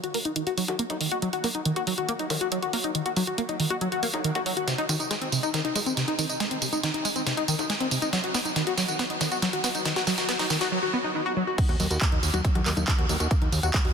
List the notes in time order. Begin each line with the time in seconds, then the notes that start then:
0.04 F#4, closed hi-hat
0.14 A#3, open hi-hat
0.25 D#4, closed hi-hat
0.36 D#3, closed hi-hat
0.47 F#4, closed hi-hat
0.58 F#3, open hi-hat
0.68 F#4, closed hi-hat, high conga
0.79 A#3, closed hi-hat
0.90 D#4, closed hi-hat, high conga
1.01 D#3, open hi-hat
1.11 F#4, closed hi-hat
1.22 F#3, closed hi-hat
1.33 F#4, closed hi-hat
1.44 A#3, open hi-hat, high conga
1.55 D#4, closed hi-hat
1.65 D#3, closed hi-hat
1.76 F#4, closed hi-hat
1.87 F#3, open hi-hat
1.98 F#4, closed hi-hat
2.09 A#3, closed hi-hat
2.19 D#4, closed hi-hat
2.30 D#3, open hi-hat, high conga
2.41 F#4, closed hi-hat
2.52 F#3, closed hi-hat
2.62 F#4, closed hi-hat
2.73 A#3, open hi-hat
2.84 D#4, closed hi-hat
2.95 D#3, closed hi-hat
3.06 F#4, closed hi-hat
3.16 F#3, open hi-hat, high conga
3.27 F#4, closed hi-hat
3.38 A#3, closed hi-hat
3.49 D#4, closed hi-hat
3.60 D#3, open hi-hat
3.70 F#4, closed hi-hat
3.81 F#3, closed hi-hat
3.92 F#4, closed hi-hat
4.03 A#3, open hi-hat
4.14 D#4, closed hi-hat, high conga
4.24 D#3, closed hi-hat
4.35 F#4, closed hi-hat, high conga
4.46 F#3, open hi-hat
4.57 F#4, closed hi-hat
4.67 C3, snare, closed hi-hat, tambourine
4.78 D#4, closed hi-hat
4.89 D#3, open hi-hat, tambourine, high conga
5.00 D#4, closed hi-hat, tambourine
5.11 G#3, snare, closed hi-hat, tambourine
5.21 C4, closed hi-hat
5.32 C3, open hi-hat, tambourine
5.43 D#4, closed hi-hat, tambourine
5.54 D#3, snare, closed hi-hat, tambourine
5.65 D#4, closed hi-hat
5.75 G#3, open hi-hat, tambourine, high conga
5.86 C4, closed hi-hat, tambourine
5.97 C3, snare, closed hi-hat, tambourine
6.08 D#4, closed hi-hat
6.19 D#3, open hi-hat, tambourine
6.29 D#4, closed hi-hat, tambourine
6.40 G#3, snare, closed hi-hat, tambourine
6.51 C4, closed hi-hat
6.62 C3, open hi-hat, tambourine, high conga
6.73 D#4, closed hi-hat, tambourine
6.83 D#3, snare, closed hi-hat, tambourine
6.94 D#4, closed hi-hat
7.05 G#3, open hi-hat, tambourine
7.16 C4, closed hi-hat, tambourine
7.27 C3, snare, closed hi-hat, tambourine
7.37 D#4, closed hi-hat
7.48 D#3, open hi-hat, tambourine
7.59 D#4, closed hi-hat, tambourine, high conga
7.70 G#3, snare, closed hi-hat, tambourine
7.80 C4, closed hi-hat, high conga
7.91 C3, open hi-hat, tambourine
8.02 D#4, closed hi-hat, tambourine
8.13 F#3, snare, closed hi-hat, tambourine
8.24 F#4, closed hi-hat
8.34 B3, snare, open hi-hat, tambourine, high conga
8.45 D#4, closed hi-hat, tambourine
8.56 D#3, snare, closed hi-hat, tambourine
8.67 F#4, closed hi-hat
8.78 F#3, snare, open hi-hat, tambourine
8.88 F#4, closed hi-hat, tambourine
8.99 B3, snare, closed hi-hat, tambourine
9.10 D#4, closed hi-hat
9.21 D#3, snare, open hi-hat, tambourine, high conga
9.32 F#4, closed hi-hat, tambourine
9.42 F#3, snare, closed hi-hat, tambourine
9.53 F#4, closed hi-hat
9.64 B3, snare, open hi-hat, tambourine
9.75 D#4, closed hi-hat, tambourine
9.85 D#3, snare, closed hi-hat, tambourine
9.96 F#4, snare, closed hi-hat
10.07 F#3, snare, open hi-hat, tambourine, high conga
10.18 F#4, snare, closed hi-hat, tambourine
10.29 B3, snare, closed hi-hat, tambourine
10.39 D#4, snare, open hi-hat
10.50 D#3, snare, open hi-hat, tambourine
10.61 F#4, snare, closed hi-hat, tambourine
10.72 F#3
10.83 F#4
10.93 B3
11.04 D#4
11.15 D#3
11.26 F#4
11.37 F#3
11.47 F#4
11.58 D#3, kick, closed hi-hat, crash, tambourine
11.69 D#2 F#4, closed hi-hat
11.80 D#2 F#3, open hi-hat, tambourine
11.91 D#2 F#4, closed hi-hat, tambourine
12.01 A#3, kick, clap, closed hi-hat, tambourine
12.12 D#2 D#4, closed hi-hat
12.23 D#2 D#3, open hi-hat, tambourine
12.34 D#2 F#4, closed hi-hat, tambourine, high conga
12.45 F#3, kick, closed hi-hat, tambourine
12.55 D#2 F#4, closed hi-hat, high conga
12.66 D#2 A#3, clap, open hi-hat, tambourine
12.77 D#2 D#4, closed hi-hat, tambourine, high conga
12.88 D#3, kick, clap, closed hi-hat, tambourine
12.98 D#2 F#4, closed hi-hat
13.09 D#2 F#3, open hi-hat, tambourine
13.20 D#2 F#4, closed hi-hat, tambourine
13.31 A#3, kick, closed hi-hat, tambourine
13.42 D#2 D#4, closed hi-hat
13.52 D#2 D#3, open hi-hat, tambourine
13.63 D#2 F#4, closed hi-hat, tambourine
13.74 F#3, kick, clap, closed hi-hat
13.85 D#2 F#4, open hi-hat